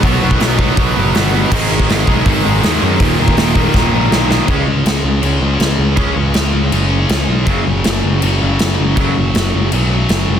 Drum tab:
CC |----------------|x---------------|----------------|x---x---x---x---|
HH |o---o---o---o---|----o---o---o---|o---o-----------|----------------|
SD |----o-------o---|----o-------o---|----o---o---o-o-|----o-------o---|
BD |o--o--o-o-------|o--o--o-o-------|o--o--o-o-------|o---------------|

CC |x---x---x---x---|x---x---x---x---|x---x---x---x---|
HH |----------------|----------------|----------------|
SD |----o-------o---|----o-------o---|----o-------o---|
BD |o---------------|o---------------|o---------------|